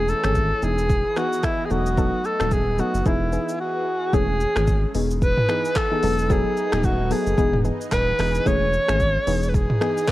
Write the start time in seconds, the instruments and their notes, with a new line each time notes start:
Already playing: sub bass E1, analog synth pad E3 A3 C#4, alto saxophone G#4
0.08 alto saxophone A4, shaker
0.24 sub bass G#1, synth pluck E3 A3 C#4 G#4, finger snap, cross-stick, shaker
0.35 kick, shaker
0.62 sub bass E1, synth pluck E3 B3 D#4 G#4, analog synth pad E3 B3 G#4 D#5, alto saxophone G#4, shaker
0.78 shaker
0.89 kick, shaker
1.16 synth pluck E3 B3 D#4 G#4, alto saxophone F#4, finger snap, cross-stick, shaker
1.33 shaker
1.43 alto saxophone E4, finger snap, kick, cross-stick, shaker
1.65 alto saxophone G#4
1.70 sub bass E1, synth pluck F#3 B3 D#4 A4, analog synth pad A3, alto saxophone F#4, shaker
1.86 shaker
1.97 synth pluck F#3 B3 D#4 A4, kick, shaker
2.24 alto saxophone A4, shaker
2.40 sub bass D#1, synth pluck F#3 B3 D#4 A4, finger snap, cross-stick, shaker
2.51 alto saxophone G#4, kick, shaker
2.78 synth pluck F#3 B3 D#4 A4, alto saxophone F#4, shaker
2.94 sub bass F#1, shaker
3.05 sub bass E1, synth pluck E3 B3 D#4 G#4, analog synth pad E3 G#4, alto saxophone E4, kick, shaker
3.32 synth pluck E3 B3 D#4 G#4, shaker
3.49 shaker
3.60 alto saxophone F#4
4.13 sub bass E1, synth pluck E3 A3 C#4 G#4, analog synth pad G#3 A3 C#4, alto saxophone G#4, kick, shaker
4.41 shaker
4.56 sub bass G#1, synth pluck E3 A3 C#4 G#4, finger snap, cross-stick, shaker
4.67 kick, shaker
4.94 sub bass E1, synth pluck E3 B3 D#4 G#4, analog synth pad E3 B3 D#4 G#4, open hi-hat, shaker
5.11 shaker
5.22 alto saxophone B4, kick, shaker
5.37 mid tom
5.48 synth pluck E3 B3 D#4 G#4, finger snap, cross-stick, shaker
5.65 shaker
5.75 alto saxophone A4, finger snap, kick, cross-stick, clap, shaker
5.91 synth pluck E3 B3 D#4 G#4
6.03 sub bass E1, synth pluck F#3 B3 D#4 A4, analog synth pad A3 D#4, open hi-hat, shaker
6.19 shaker
6.29 synth pluck F#3 B3 D#4 A4, alto saxophone G#4, kick, shaker
6.57 shaker
6.72 sub bass D#1, synth pluck F#3 B3 D#4 A4, finger snap, cross-stick, shaker
6.84 alto saxophone F#4, kick, shaker
7.10 synth pluck F#3 B3 D#4 A4, alto saxophone G#4, open hi-hat, shaker
7.27 sub bass F#1, shaker
7.37 sub bass E1, synth pluck E3 B3 D#4 G#4, analog synth pad E3 D#4 G#4, kick, shaker
7.54 mid tom
7.64 synth pluck E3 B3 D#4 G#4, shaker
7.81 shaker
7.92 sub bass D#1, alto saxophone B4, finger snap, kick, cross-stick, clap, shaker
8.19 sub bass E1, synth pluck E3 B3 D#4 G#4, finger snap, cross-stick, open hi-hat, shaker
8.35 shaker
8.46 sub bass E1, synth pluck E3 A3 C#4 G#4, analog synth pad G#3 A3 C#4, alto saxophone C#5, kick, shaker
8.73 shaker
8.88 sub bass G#1, synth pluck E3 A3 C#4 G#4, finger snap, cross-stick, shaker
9.00 kick, shaker
9.27 sub bass E1, synth pluck E3 B3 D#4 G#4, analog synth pad E3 B3 D#4 G#4, open hi-hat, shaker
9.43 shaker
9.49 alto saxophone B4
9.54 alto saxophone G#4, kick, shaker
9.70 mid tom
9.81 synth pluck E3 B3 D#4 G#4, finger snap, cross-stick, shaker
9.98 shaker
10.08 kick, cross-stick, clap, shaker